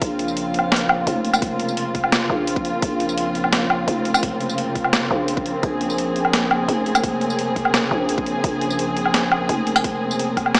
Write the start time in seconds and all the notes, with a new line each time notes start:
0.01 A#1 C#3 A#3 C4 F4, kick, closed hi-hat
0.19 closed hi-hat
0.28 tambourine
0.37 closed hi-hat
0.54 closed hi-hat
0.59 low woodblock
0.72 snare
0.76 closed hi-hat
0.89 low woodblock
1.07 F1, closed hi-hat
1.25 closed hi-hat
1.33 tambourine, low woodblock
1.42 kick, closed hi-hat
1.60 closed hi-hat
1.69 tambourine
1.77 closed hi-hat
1.95 kick, closed hi-hat
2.04 low woodblock
2.12 snare, closed hi-hat
2.30 A#1
2.47 closed hi-hat
2.56 kick
2.65 closed hi-hat
2.82 A#1, kick, closed hi-hat
3.00 closed hi-hat
3.09 tambourine
3.18 closed hi-hat
3.35 closed hi-hat
3.44 low woodblock
3.53 snare, closed hi-hat
3.70 low woodblock
3.88 F1, closed hi-hat
4.05 closed hi-hat
4.14 tambourine, low woodblock
4.23 kick, closed hi-hat
4.41 closed hi-hat
4.49 tambourine
4.58 closed hi-hat
4.75 kick, closed hi-hat
4.84 low woodblock
4.93 snare, closed hi-hat
5.11 A#1
5.28 closed hi-hat
5.37 kick
5.46 closed hi-hat
5.63 A#1 G#4, kick, closed hi-hat
5.81 closed hi-hat
5.90 tambourine
5.98 closed hi-hat
6.16 closed hi-hat
6.25 low woodblock
6.33 snare, closed hi-hat
6.51 low woodblock
6.68 F1, closed hi-hat
6.86 closed hi-hat
6.95 tambourine, low woodblock
7.03 kick, closed hi-hat
7.21 closed hi-hat
7.30 tambourine
7.39 closed hi-hat
7.56 kick, closed hi-hat
7.65 low woodblock
7.74 snare, closed hi-hat
7.91 A#1
8.09 closed hi-hat
8.18 kick
8.26 closed hi-hat
8.44 A#1, kick, closed hi-hat
8.61 closed hi-hat
8.70 tambourine
8.79 closed hi-hat
8.97 closed hi-hat
9.06 low woodblock
9.14 snare, closed hi-hat
9.32 low woodblock
9.49 F1, closed hi-hat
9.67 closed hi-hat
9.76 tambourine, low woodblock
9.84 kick, closed hi-hat
10.11 tambourine
10.19 closed hi-hat
10.37 kick, closed hi-hat, low woodblock
10.46 low woodblock
10.55 snare, closed hi-hat